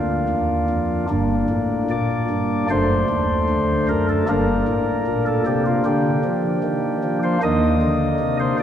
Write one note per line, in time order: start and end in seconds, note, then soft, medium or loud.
0.00 0.24 D2 medium
0.00 1.06 A#3 soft
0.00 1.06 D4 medium
0.00 1.05 F4 medium
0.29 0.64 D#2 medium
0.70 1.04 F2 medium
1.10 1.44 G1 medium
1.10 1.44 G2 medium
1.10 2.66 A#3 medium
1.10 2.66 D4 medium
1.49 1.84 A2 medium
1.90 2.24 A#2 medium
1.90 2.68 D5 loud
2.30 2.64 G2 medium
2.70 3.04 F#1 medium
2.70 3.04 F#2 medium
2.70 4.26 A3 soft
2.70 4.25 D4 soft
2.70 3.86 C5 loud
3.10 3.44 D#2 medium
3.50 3.84 D2 medium
3.89 4.23 F#2 medium
3.89 4.06 A#4 loud
4.09 4.26 A4 loud
4.28 4.63 G1 medium
4.28 4.62 G2 medium
4.28 7.38 A#3 soft
4.28 7.39 D4 medium
4.28 5.24 A#4 loud
4.68 5.02 A2 medium
5.07 5.41 A#2 medium
5.26 5.44 A4 loud
5.46 5.80 C3 medium
5.46 5.63 G4 loud
5.66 5.83 F4 medium
5.85 6.19 D3 medium
5.85 7.19 G4 loud
6.25 6.58 F3 medium
6.63 6.97 D#3 medium
7.04 7.37 F3 medium
7.23 7.40 C5 loud
7.42 7.76 D#2 medium
7.42 7.76 D#3 medium
7.42 8.63 A#3 medium
7.42 8.63 D4 medium
7.42 8.37 D#5 loud
7.82 8.15 D3 medium
8.20 8.53 C3 medium
8.40 8.56 C5 loud
8.60 8.63 A#2 medium
8.60 8.63 D5 loud